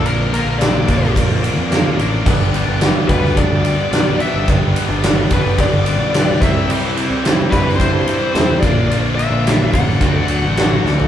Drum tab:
CC |----------------|x---------------|----------------|x---------------|
RD |x-x-x-x-x-x-x-x-|--x-x-x-x-x-x-x-|x-x-x-x-x-x-x-x-|--x-x-x-x-x-x-x-|
SD |----o--o----o---|----o--o----o---|----o--o----o---|----o--o----o---|
FT |----------------|----------------|----------------|----------------|
BD |------o-o-------|o-----o-o-------|o-----o-o-----o-|------o-o-----o-|

CC |----------------|
RD |x-x-x-x-x-x-x---|
SD |----o--o----o-o-|
FT |---------------o|
BD |------o-o-------|